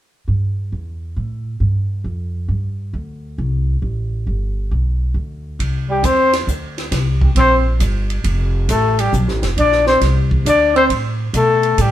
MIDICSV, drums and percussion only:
0, 0, Header, 1, 2, 480
1, 0, Start_track
1, 0, Key_signature, 0, "major"
1, 0, Tempo, 442152
1, 308, Time_signature, 3, 2, 24, 8
1, 12933, End_track
2, 0, Start_track
2, 0, Title_t, "Drums"
2, 6073, Note_on_c, 9, 36, 18
2, 6078, Note_on_c, 9, 51, 50
2, 6181, Note_off_c, 9, 36, 0
2, 6187, Note_off_c, 9, 51, 0
2, 6551, Note_on_c, 9, 36, 23
2, 6554, Note_on_c, 9, 44, 47
2, 6554, Note_on_c, 9, 51, 54
2, 6659, Note_off_c, 9, 36, 0
2, 6662, Note_off_c, 9, 44, 0
2, 6662, Note_off_c, 9, 51, 0
2, 6874, Note_on_c, 9, 38, 33
2, 6875, Note_on_c, 9, 51, 57
2, 6983, Note_off_c, 9, 38, 0
2, 6984, Note_off_c, 9, 51, 0
2, 7030, Note_on_c, 9, 36, 23
2, 7036, Note_on_c, 9, 44, 48
2, 7138, Note_off_c, 9, 36, 0
2, 7145, Note_off_c, 9, 44, 0
2, 7358, Note_on_c, 9, 38, 28
2, 7359, Note_on_c, 9, 51, 37
2, 7467, Note_off_c, 9, 38, 0
2, 7468, Note_off_c, 9, 51, 0
2, 7508, Note_on_c, 9, 36, 17
2, 7508, Note_on_c, 9, 38, 32
2, 7510, Note_on_c, 9, 51, 51
2, 7617, Note_off_c, 9, 36, 0
2, 7617, Note_off_c, 9, 38, 0
2, 7618, Note_off_c, 9, 51, 0
2, 7832, Note_on_c, 9, 36, 45
2, 7941, Note_off_c, 9, 36, 0
2, 7987, Note_on_c, 9, 36, 21
2, 7987, Note_on_c, 9, 51, 54
2, 8095, Note_off_c, 9, 51, 0
2, 8096, Note_off_c, 9, 36, 0
2, 8468, Note_on_c, 9, 36, 18
2, 8469, Note_on_c, 9, 44, 47
2, 8469, Note_on_c, 9, 51, 57
2, 8577, Note_off_c, 9, 36, 0
2, 8578, Note_off_c, 9, 44, 0
2, 8578, Note_off_c, 9, 51, 0
2, 8792, Note_on_c, 9, 51, 38
2, 8900, Note_off_c, 9, 51, 0
2, 8947, Note_on_c, 9, 51, 54
2, 8948, Note_on_c, 9, 36, 22
2, 9056, Note_off_c, 9, 51, 0
2, 9057, Note_off_c, 9, 36, 0
2, 9430, Note_on_c, 9, 36, 21
2, 9430, Note_on_c, 9, 44, 52
2, 9430, Note_on_c, 9, 51, 52
2, 9538, Note_off_c, 9, 36, 0
2, 9539, Note_off_c, 9, 44, 0
2, 9539, Note_off_c, 9, 51, 0
2, 9755, Note_on_c, 9, 51, 57
2, 9864, Note_off_c, 9, 51, 0
2, 9910, Note_on_c, 9, 36, 22
2, 9913, Note_on_c, 9, 44, 47
2, 10018, Note_off_c, 9, 36, 0
2, 10022, Note_off_c, 9, 44, 0
2, 10076, Note_on_c, 9, 38, 25
2, 10185, Note_off_c, 9, 38, 0
2, 10232, Note_on_c, 9, 38, 36
2, 10235, Note_on_c, 9, 51, 38
2, 10341, Note_off_c, 9, 38, 0
2, 10344, Note_off_c, 9, 51, 0
2, 10392, Note_on_c, 9, 36, 20
2, 10395, Note_on_c, 9, 51, 52
2, 10500, Note_off_c, 9, 36, 0
2, 10504, Note_off_c, 9, 51, 0
2, 10553, Note_on_c, 9, 38, 23
2, 10662, Note_off_c, 9, 38, 0
2, 10709, Note_on_c, 9, 38, 36
2, 10818, Note_off_c, 9, 38, 0
2, 10870, Note_on_c, 9, 38, 33
2, 10871, Note_on_c, 9, 51, 53
2, 10872, Note_on_c, 9, 36, 19
2, 10979, Note_off_c, 9, 38, 0
2, 10980, Note_off_c, 9, 36, 0
2, 10980, Note_off_c, 9, 51, 0
2, 11195, Note_on_c, 9, 36, 47
2, 11303, Note_off_c, 9, 36, 0
2, 11354, Note_on_c, 9, 36, 19
2, 11357, Note_on_c, 9, 44, 51
2, 11357, Note_on_c, 9, 51, 50
2, 11462, Note_off_c, 9, 36, 0
2, 11466, Note_off_c, 9, 44, 0
2, 11466, Note_off_c, 9, 51, 0
2, 11681, Note_on_c, 9, 51, 34
2, 11789, Note_off_c, 9, 51, 0
2, 11831, Note_on_c, 9, 36, 20
2, 11833, Note_on_c, 9, 51, 51
2, 11940, Note_off_c, 9, 36, 0
2, 11942, Note_off_c, 9, 51, 0
2, 12308, Note_on_c, 9, 44, 53
2, 12308, Note_on_c, 9, 51, 53
2, 12309, Note_on_c, 9, 36, 18
2, 12417, Note_off_c, 9, 36, 0
2, 12417, Note_off_c, 9, 44, 0
2, 12417, Note_off_c, 9, 51, 0
2, 12627, Note_on_c, 9, 51, 38
2, 12735, Note_off_c, 9, 51, 0
2, 12787, Note_on_c, 9, 36, 19
2, 12788, Note_on_c, 9, 44, 42
2, 12788, Note_on_c, 9, 51, 60
2, 12896, Note_off_c, 9, 36, 0
2, 12897, Note_off_c, 9, 44, 0
2, 12897, Note_off_c, 9, 51, 0
2, 12933, End_track
0, 0, End_of_file